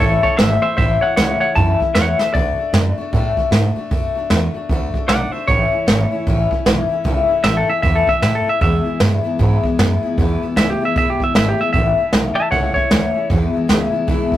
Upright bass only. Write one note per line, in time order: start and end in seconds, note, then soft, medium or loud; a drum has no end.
0.00 0.23 A1 medium
0.24 muted upright bass stroke medium
0.39 0.62 G#1 medium
0.63 muted upright bass stroke medium
0.78 1.01 A1 medium
1.01 muted upright bass stroke medium
1.18 1.41 C#2 loud
1.41 muted upright bass stroke medium
1.56 1.80 F#2 medium
1.81 muted upright bass stroke medium
1.95 2.19 E2 medium
2.19 muted upright bass stroke medium
2.34 2.57 D2 medium
2.58 muted upright bass stroke medium
2.73 2.97 F#2 loud
2.97 muted upright bass stroke medium
3.13 3.36 A2 medium
3.37 muted upright bass stroke medium
3.51 3.75 G#2 medium
3.76 muted upright bass stroke medium
3.91 4.14 F#2 medium
4.14 muted upright bass stroke soft
4.30 4.53 E2 medium
4.54 muted upright bass stroke medium
4.69 4.93 D2 medium
4.94 muted upright bass stroke medium
5.08 5.31 B1 medium
5.32 muted upright bass stroke medium
5.48 5.71 A1 medium
5.71 muted upright bass stroke medium
5.87 6.10 G#1 loud
6.10 muted upright bass stroke medium
6.27 6.50 A1 medium
6.51 muted upright bass stroke medium
6.66 6.89 B1 medium
6.89 muted upright bass stroke medium
7.05 7.28 C#2 medium
7.29 muted upright bass stroke medium
7.44 7.67 A1 loud
7.68 muted upright bass stroke medium
7.83 8.07 E2 medium
8.07 muted upright bass stroke medium
8.22 8.45 A2 medium
8.46 muted upright bass stroke medium
8.61 8.84 E2 medium
8.86 muted upright bass stroke medium
9.00 9.24 G2 loud
9.25 muted upright bass stroke medium
9.39 9.63 G#2 medium
9.63 muted upright bass stroke medium
9.78 10.02 F#2 medium
10.03 muted upright bass stroke medium
10.17 10.41 E2 medium
10.41 muted upright bass stroke medium
10.56 10.79 C#2 loud
10.80 muted upright bass stroke medium
10.96 11.18 B1 medium
11.34 11.58 G#1 medium
11.59 muted upright bass stroke medium
11.74 11.97 A1 loud
11.98 muted upright bass stroke medium
12.13 12.36 B1 loud
12.36 muted upright bass stroke medium
12.52 12.75 C#2 medium
12.76 muted upright bass stroke medium
12.91 13.14 D2 loud
13.15 muted upright bass stroke medium
13.30 13.53 E2 medium
13.54 muted upright bass stroke medium
13.69 13.92 C#2 loud
13.94 muted upright bass stroke medium
14.08 14.30 D2 medium